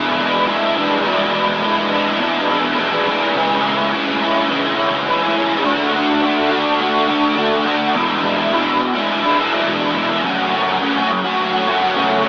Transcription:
Already playing: E2 B2 E3 G#3 D4 E4
0.18 E3 G#3 D4 E4
0.47 E3 G#3 D4 E4
0.76 E3 G#3 D4 E4
1.04 E2 B2 E3 G#3 D4 E4
1.34 E3 G#3 D4 E4
1.63 E3 G#3 D4 E4
1.91 E3 G#3 D4 E4
2.19 E2 B2 E3 G#3 D4 E4
2.48 E3 G#3 D4 E4
2.77 E3 G#3 D4 E4
3.06 E3 G#3 D4 E4
3.34 C#3 E3 G#3 C#4 E4
3.64 G#3 C#4 E4
3.92 E3 G#3 C#4 E4
4.21 G#3 C#4 E4
4.50 C#3 E3 G#3 C#4 E4
4.78 G#3 C#4 E4
5.07 E3 G#3 C#4 E4
5.36 G#3 C#4 E4
5.64 D3 A3 D4 F#4
5.94 A3 D4 F#4
6.23 D3 A3 D4 F#4
6.50 A3 D4 F#4
6.80 D3 A3 D4 F#4
7.08 A3 D4 F#4
7.36 D3 A3 D4 F#4
7.65 A3 D4 F#4
7.95 E2 B2 E3 G#3 D4 E4
8.23 E3 G#3 D4 E4
8.51 E2 B2 E3 G#3 D4 E4
8.65 E3 G#3 D4 E4
8.82 muted overdriven electric guitar stroke
8.94 E3 G#3 D4 E4
9.24 E3 G#3 D4 E4
9.38 E3 G#3 D4 E4
9.53 E3 G#3 D4 E4
9.67 E2 B2 E3 G#3 D4 E4
9.96 E3 G#3 D4 E4
10.09 E3 G#3 D4 E4
10.24 F#2 C#3 F#3 A3 C#4 F#4
10.54 F#3 A3 C#4 F#4
10.82 F#2 C#3 F#3 A3 C#4 F#4
10.96 F#3 A3 C#4 F#4
11.11 muted overdriven electric guitar stroke
11.24 F#3 A3 C#4 F#4
11.53 F#3 A3 C#4 F#4
11.67 F#3 A3 C#4 F#4
11.82 F#3 A3 C#4 F#4
11.95 F#2 C#3 F#3 A3 C#4 F#4
12.23 F#3 A3 C#4

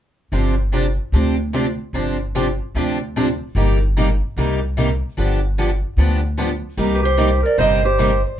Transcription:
0.32 G1 C3 F3 C4 D4 G4
0.72 C3 F3 C4 D4 G4
1.12 D2 C3 F3 C4 D4 G4
1.53 C3 F3 C4 D4 G4
1.93 G1 C3 F3 C4 D4 G4
2.35 C3 F3 C4 D4 G4
2.75 D2 C3 F3 C4 D4 G4
3.16 C3 F3 C4 D4 G4
3.55 G1 C3 G3 A#3 D#4 G4
3.97 C3 G3 A#3 D#4 G4
4.37 C2 C3 G3 A#3 D#4 G4
4.77 C3 G3 A#3 D#4 G4
5.17 G1 D3 F3 B3 D4 G4
5.58 D3 F3 B3 D4 G4
5.97 D2 D3 F3 B3 D4 G4
6.37 D3 F3 B3 D4 G4
6.77 C2 C3 G3 A#3 D#4 G4
6.94 G4 B4
7.03 G4 C5
7.17 C3 G3 A#3 D#4 G4
7.43 A#4 D5
7.58 G1 C3 G3 A#3 D#4 G4 C5 D#5
7.84 G4 C5
7.99 C3 G3 A#3 D#4 G4

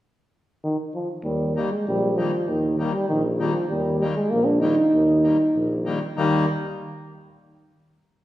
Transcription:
0.63 D#3
0.94 F3
1.24 D#2 G3
1.55 D#3 G3 A#3
1.71 G#3
1.88 A#1 G3
2.17 D#3 F3 G3 A#3
2.48 D#2 D#3
2.78 D#3 G3 A#3
2.93 G3
3.09 A#1 D#3
3.39 D#3 F3 G3 A#3
3.69 D#2 G3
3.99 D#3 G3 A#3
4.16 G#3
4.30 A#1 A#3
4.45 D4
4.60 D#3 G3 A#3 D#4
4.93 D#2
5.24 D#3 G3 A#3
5.55 A#1
5.85 D#3 G3 A#3
6.15 D#2 D#3 G3 A#3 D#4

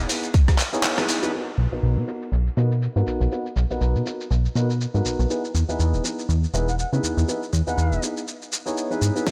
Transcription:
0.09 B3 D#4 E4 G#4 B4, open hi-hat, tambourine, shaker
0.23 closed hi-hat, tambourine, shaker
0.34 kick, closed hi-hat, tambourine, shaker
0.48 kick, cross-stick, closed hi-hat, shaker
0.58 clap, open hi-hat, tambourine, shaker
0.72 B3 D#4 E4 G#4 C#5, tambourine, shaker
0.83 clap, closed hi-hat, tambourine, shaker
0.97 B3 D#4 E4 G#4 B4, cross-stick, closed hi-hat, shaker
1.08 open hi-hat, tambourine, shaker
1.22 B3 D#4 E4 G#4 B4, closed hi-hat, tambourine, shaker
1.33 B3 F#4 A#4 B4, crash, shaker
1.48 shaker
1.58 B1, shaker
1.72 B1 B3 D#4 F#4 A#4 B4, shaker
1.83 B1, shaker
1.97 B2, shaker
2.07 B3 D#4 F#4 A#4 B4, shaker
2.22 shaker
2.32 B1, shaker
2.47 shaker
2.57 B2 B3 D#4 F#4 A#4 B4, shaker
2.71 shaker
2.82 tambourine, shaker
2.96 G#2 B3 D#4 F#4 A#4 B4, shaker
3.07 B1, shaker
3.20 B1, shaker
3.31 B3 D#4 F#4 A#4 B4, shaker
3.45 tambourine, shaker
3.56 B1, tambourine, shaker
3.70 B1 B3 D#4 F#4 A#4 B4, shaker
3.81 B1, shaker
3.95 B2, shaker
4.06 B3 D#4 F#4 A#4 B4, shaker
4.20 shaker
4.31 B1, shaker
4.45 shaker
4.55 B2 B3 D#4 F#4 A#4 B4, shaker
4.70 shaker
4.81 shaker
4.94 G#2 B3 D#4 F#4 A#4 B4, shaker
5.05 B1, shaker
5.19 B1, shaker
5.30 B3 D#4 E4 G#4 B4, shaker
5.44 shaker
5.55 E2, shaker
5.68 E2 B3 D#4 E4 G#4 B4, shaker
5.79 E2, shaker
5.93 E1, shaker
6.04 B3 D#4 E4 G#4 B4, shaker
6.19 shaker
6.29 E2, tambourine, shaker
6.44 shaker
6.53 E1 B3 D#4 E4 G#4 B4, tambourine, shaker
6.68 F#5, shaker
6.79 F#5, shaker
6.92 C#3 B3 D#4 E4 G#4 B4, tambourine, shaker
7.03 E2, shaker
7.17 E2, tambourine, shaker
7.28 B3 D#4 E4 G#4 B4, tambourine, shaker
7.43 tambourine, shaker
7.53 E2, tambourine, shaker
7.67 E2 B3 D#4 E4 G#4 B4 F#5, tambourine, shaker
7.78 E2, tambourine, shaker
7.92 E1, shaker
8.02 B3 D#4 E4 G#4 B4, shaker
8.17 tambourine, shaker
8.27 tambourine, shaker
8.42 shaker
8.52 tambourine, shaker
8.65 B3 D#4 E4 G#4 C#5, tambourine, shaker
8.77 shaker
8.90 B3 D#4 E4 G#4 B4, tambourine, shaker
9.02 G#2, tambourine, shaker
9.15 B3 D#4 E4 G#4 B4, shaker
9.26 D#4, kick, snare, closed hi-hat, shaker

